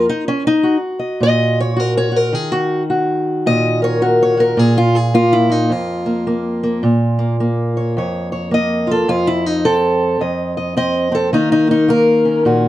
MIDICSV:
0, 0, Header, 1, 2, 480
1, 0, Start_track
1, 0, Key_signature, -5, "minor"
1, 0, Tempo, 562852
1, 55, Time_signature, 4, 2, 24, 8
1, 10815, End_track
2, 0, Start_track
2, 0, Title_t, "Steel-string acoustic guitar"
2, 0, Program_c, 0, 25
2, 0, Note_on_c, 0, 73, 43
2, 80, Note_on_c, 0, 63, 85
2, 106, Note_off_c, 0, 73, 0
2, 228, Note_off_c, 0, 63, 0
2, 239, Note_on_c, 0, 61, 86
2, 388, Note_off_c, 0, 61, 0
2, 400, Note_on_c, 0, 63, 96
2, 541, Note_on_c, 0, 66, 59
2, 649, Note_off_c, 0, 63, 0
2, 848, Note_on_c, 0, 75, 47
2, 1027, Note_on_c, 0, 46, 64
2, 1046, Note_off_c, 0, 75, 0
2, 1049, Note_on_c, 0, 75, 108
2, 1355, Note_off_c, 0, 75, 0
2, 1368, Note_on_c, 0, 73, 87
2, 1495, Note_off_c, 0, 66, 0
2, 1505, Note_on_c, 0, 66, 66
2, 1532, Note_off_c, 0, 73, 0
2, 1532, Note_on_c, 0, 70, 77
2, 1677, Note_off_c, 0, 70, 0
2, 1684, Note_on_c, 0, 73, 93
2, 1796, Note_off_c, 0, 66, 0
2, 1806, Note_on_c, 0, 66, 47
2, 1845, Note_off_c, 0, 73, 0
2, 1845, Note_on_c, 0, 70, 80
2, 1962, Note_off_c, 0, 66, 0
2, 1984, Note_on_c, 0, 51, 72
2, 1986, Note_off_c, 0, 46, 0
2, 2001, Note_off_c, 0, 70, 0
2, 2001, Note_on_c, 0, 68, 97
2, 2148, Note_on_c, 0, 66, 96
2, 2152, Note_off_c, 0, 68, 0
2, 2406, Note_off_c, 0, 66, 0
2, 2472, Note_on_c, 0, 66, 59
2, 2953, Note_on_c, 0, 46, 72
2, 2958, Note_on_c, 0, 75, 113
2, 3257, Note_on_c, 0, 70, 46
2, 3270, Note_off_c, 0, 75, 0
2, 3274, Note_on_c, 0, 73, 92
2, 3415, Note_off_c, 0, 66, 0
2, 3425, Note_on_c, 0, 66, 61
2, 3426, Note_off_c, 0, 70, 0
2, 3429, Note_on_c, 0, 70, 85
2, 3430, Note_off_c, 0, 73, 0
2, 3588, Note_off_c, 0, 70, 0
2, 3604, Note_on_c, 0, 73, 94
2, 3719, Note_off_c, 0, 66, 0
2, 3729, Note_on_c, 0, 66, 48
2, 3753, Note_on_c, 0, 70, 92
2, 3755, Note_off_c, 0, 73, 0
2, 3886, Note_off_c, 0, 66, 0
2, 3888, Note_off_c, 0, 46, 0
2, 3898, Note_on_c, 0, 46, 81
2, 3908, Note_off_c, 0, 51, 0
2, 3916, Note_off_c, 0, 70, 0
2, 3916, Note_on_c, 0, 68, 98
2, 4072, Note_off_c, 0, 68, 0
2, 4072, Note_on_c, 0, 65, 97
2, 4221, Note_on_c, 0, 68, 91
2, 4230, Note_off_c, 0, 65, 0
2, 4384, Note_off_c, 0, 68, 0
2, 4384, Note_on_c, 0, 58, 61
2, 4389, Note_on_c, 0, 65, 99
2, 4542, Note_on_c, 0, 64, 99
2, 4548, Note_off_c, 0, 65, 0
2, 4685, Note_off_c, 0, 58, 0
2, 4688, Note_on_c, 0, 58, 48
2, 4702, Note_off_c, 0, 64, 0
2, 4702, Note_on_c, 0, 63, 99
2, 4855, Note_on_c, 0, 41, 65
2, 4864, Note_off_c, 0, 46, 0
2, 4865, Note_off_c, 0, 63, 0
2, 4873, Note_on_c, 0, 65, 113
2, 5157, Note_off_c, 0, 58, 0
2, 5167, Note_on_c, 0, 58, 50
2, 5336, Note_off_c, 0, 58, 0
2, 5346, Note_on_c, 0, 58, 62
2, 5648, Note_off_c, 0, 58, 0
2, 5657, Note_on_c, 0, 58, 47
2, 5811, Note_off_c, 0, 58, 0
2, 5822, Note_off_c, 0, 41, 0
2, 5824, Note_on_c, 0, 46, 74
2, 6129, Note_on_c, 0, 58, 48
2, 6303, Note_off_c, 0, 58, 0
2, 6311, Note_off_c, 0, 65, 0
2, 6314, Note_on_c, 0, 58, 59
2, 6626, Note_on_c, 0, 73, 44
2, 6786, Note_off_c, 0, 46, 0
2, 6794, Note_on_c, 0, 41, 67
2, 6797, Note_off_c, 0, 73, 0
2, 6806, Note_on_c, 0, 73, 47
2, 7086, Note_off_c, 0, 73, 0
2, 7096, Note_on_c, 0, 73, 44
2, 7249, Note_off_c, 0, 58, 0
2, 7259, Note_on_c, 0, 58, 58
2, 7271, Note_off_c, 0, 73, 0
2, 7283, Note_on_c, 0, 75, 91
2, 7564, Note_on_c, 0, 65, 46
2, 7595, Note_off_c, 0, 75, 0
2, 7602, Note_on_c, 0, 69, 95
2, 7721, Note_off_c, 0, 58, 0
2, 7723, Note_off_c, 0, 65, 0
2, 7735, Note_off_c, 0, 41, 0
2, 7746, Note_on_c, 0, 41, 73
2, 7753, Note_on_c, 0, 65, 99
2, 7754, Note_off_c, 0, 69, 0
2, 7908, Note_on_c, 0, 64, 95
2, 7909, Note_off_c, 0, 65, 0
2, 8070, Note_off_c, 0, 64, 0
2, 8070, Note_on_c, 0, 63, 93
2, 8227, Note_off_c, 0, 63, 0
2, 8228, Note_on_c, 0, 60, 64
2, 8230, Note_on_c, 0, 69, 104
2, 8693, Note_off_c, 0, 41, 0
2, 8703, Note_on_c, 0, 41, 62
2, 8706, Note_off_c, 0, 69, 0
2, 8708, Note_on_c, 0, 75, 50
2, 9005, Note_off_c, 0, 75, 0
2, 9015, Note_on_c, 0, 75, 49
2, 9170, Note_off_c, 0, 60, 0
2, 9177, Note_off_c, 0, 75, 0
2, 9181, Note_on_c, 0, 60, 63
2, 9188, Note_on_c, 0, 75, 100
2, 9470, Note_off_c, 0, 60, 0
2, 9480, Note_on_c, 0, 60, 50
2, 9504, Note_off_c, 0, 75, 0
2, 9506, Note_on_c, 0, 69, 94
2, 9639, Note_off_c, 0, 60, 0
2, 9660, Note_off_c, 0, 41, 0
2, 9660, Note_on_c, 0, 51, 70
2, 9661, Note_on_c, 0, 58, 51
2, 9663, Note_off_c, 0, 69, 0
2, 9669, Note_on_c, 0, 63, 98
2, 9814, Note_off_c, 0, 63, 0
2, 9824, Note_on_c, 0, 63, 101
2, 9951, Note_off_c, 0, 58, 0
2, 9955, Note_on_c, 0, 58, 46
2, 9975, Note_off_c, 0, 63, 0
2, 9986, Note_on_c, 0, 63, 91
2, 10130, Note_off_c, 0, 58, 0
2, 10134, Note_on_c, 0, 58, 60
2, 10142, Note_off_c, 0, 63, 0
2, 10148, Note_on_c, 0, 70, 102
2, 10447, Note_on_c, 0, 61, 45
2, 10618, Note_on_c, 0, 46, 64
2, 10621, Note_off_c, 0, 70, 0
2, 10626, Note_on_c, 0, 66, 52
2, 10815, Note_off_c, 0, 46, 0
2, 10815, Note_off_c, 0, 51, 0
2, 10815, Note_off_c, 0, 58, 0
2, 10815, Note_off_c, 0, 61, 0
2, 10815, Note_off_c, 0, 66, 0
2, 10815, End_track
0, 0, End_of_file